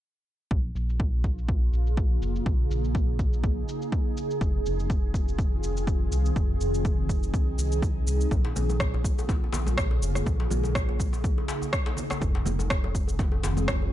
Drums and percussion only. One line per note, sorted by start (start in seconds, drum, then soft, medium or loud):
0.51 kick loud
0.76 shaker medium
0.89 shaker soft
1.00 kick loud
1.00 shaker soft
1.24 kick medium
1.24 shaker medium
1.38 shaker soft
1.49 kick loud
1.49 shaker soft
1.73 shaker medium
1.87 shaker soft
1.97 kick loud
1.97 shaker soft
2.22 shaker medium
2.36 shaker soft
2.46 kick loud
2.46 shaker soft
2.71 shaker medium
2.85 shaker soft
2.95 kick loud
2.95 shaker soft
3.19 kick medium
3.19 shaker medium
3.33 shaker medium
3.44 kick loud
3.44 shaker soft
3.69 shaker medium
3.82 shaker soft
3.92 kick loud
3.92 shaker soft
4.17 shaker medium
4.31 shaker soft
4.41 kick loud
4.41 shaker soft
4.66 shaker medium
4.80 shaker soft
4.90 kick loud
4.90 shaker soft
5.14 kick medium
5.14 shaker medium
5.28 shaker soft
5.39 kick loud
5.39 shaker soft
5.63 shaker medium
5.77 shaker soft
5.87 kick loud
5.87 shaker soft
6.12 shaker medium
6.26 shaker medium
6.36 kick loud
6.36 shaker soft
6.61 shaker medium
6.74 shaker soft
6.85 kick loud
6.85 shaker soft
7.09 kick medium
7.09 shaker medium
7.23 shaker soft
7.34 kick loud
7.34 shaker soft
7.59 shaker medium
7.72 shaker soft
7.82 kick loud
7.82 shaker soft
8.07 shaker medium
8.21 shaker soft
8.31 kick loud
8.31 high conga medium
8.31 djembe bass medium
8.31 shaker soft
8.45 djembe slap medium
8.45 djembe tone medium
8.56 muted conga soft
8.56 high conga medium
8.56 low conga medium
8.56 shaker medium
8.70 djembe tone medium
8.70 high conga medium
8.70 shaker soft
8.80 kick loud
8.80 cross-stick medium
8.80 shaker soft
8.94 muted conga soft
8.94 djembe tone medium
8.94 djembe bass medium
9.04 kick medium
9.04 high conga medium
9.04 shaker medium
9.19 djembe tone medium
9.19 shaker soft
9.29 kick loud
9.29 muted conga soft
9.29 djembe slap medium
9.29 low conga medium
9.29 shaker soft
9.44 djembe tone medium
9.53 djembe slap medium
9.53 low conga medium
9.53 shaker medium
9.66 high conga medium
9.66 djembe tone medium
9.66 shaker soft
9.77 kick loud
9.77 cross-stick medium
9.77 muted conga soft
9.77 high conga medium
9.77 low conga medium
9.77 shaker soft
9.91 djembe tone medium
10.03 shaker medium
10.15 cross-stick medium
10.15 muted conga soft
10.15 djembe tone medium
10.15 shaker soft
10.26 kick loud
10.26 high conga medium
10.26 djembe bass medium
10.26 shaker soft
10.40 djembe slap medium
10.40 djembe tone medium
10.51 muted conga soft
10.51 high conga medium
10.51 low conga medium
10.51 shaker medium
10.64 djembe tone medium
10.64 high conga medium
10.64 shaker soft
10.75 kick loud
10.75 cross-stick medium
10.75 shaker soft
10.89 muted conga soft
10.89 djembe tone medium
10.89 djembe bass medium
10.99 kick medium
10.99 high conga medium
10.99 shaker medium
11.13 djembe tone medium
11.13 shaker soft
11.24 kick loud
11.24 muted conga soft
11.24 shaker soft
11.38 djembe tone medium
11.48 djembe slap loud
11.48 shaker medium
11.62 djembe tone medium
11.62 shaker soft
11.73 kick loud
11.73 cross-stick medium
11.73 muted conga soft
11.73 shaker soft
11.86 djembe slap medium
11.86 djembe tone medium
11.97 low conga medium
11.97 shaker medium
12.10 cross-stick medium
12.10 djembe slap medium
12.10 muted conga soft
12.10 djembe tone medium
12.10 shaker soft
12.21 kick loud
12.21 high conga medium
12.21 djembe bass medium
12.21 shaker soft
12.35 djembe slap medium
12.35 djembe tone medium
12.46 muted conga soft
12.46 high conga medium
12.46 low conga loud
12.46 shaker medium
12.59 djembe tone medium
12.59 high conga medium
12.59 shaker soft
12.70 kick loud
12.70 cross-stick loud
12.70 shaker soft
12.84 muted conga soft
12.84 djembe tone medium
12.84 djembe bass medium
12.95 kick medium
12.95 high conga medium
12.95 shaker medium
13.08 djembe tone medium
13.08 shaker soft
13.19 kick loud
13.19 djembe slap medium
13.19 muted conga medium
13.19 low conga medium
13.19 shaker soft
13.32 djembe tone medium
13.43 djembe slap loud
13.43 low conga medium
13.43 shaker medium
13.57 djembe tone medium
13.57 high conga medium
13.57 shaker soft
13.68 kick loud
13.68 cross-stick loud
13.68 muted conga soft
13.68 high conga medium
13.68 low conga loud
13.68 shaker soft
13.82 djembe tone soft